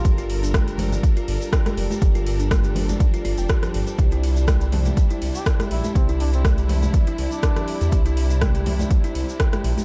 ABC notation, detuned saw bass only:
X:1
M:4/4
L:1/16
Q:"Swing 16ths" 1/4=122
K:Cmix
V:1 name="Detuned saw bass" clef=bass
G,,,6- G,,, z3 G,,, z3 F,,, z | G,,,6- G,,, z3 G,,, F,,, z2 G,,, z | C,,6- C,, z3 C,, z3 B,,, z | C,,6- C,, z3 C,, z4 E,, |
C,,6- C,, z3 C,, z3 B,,, z |]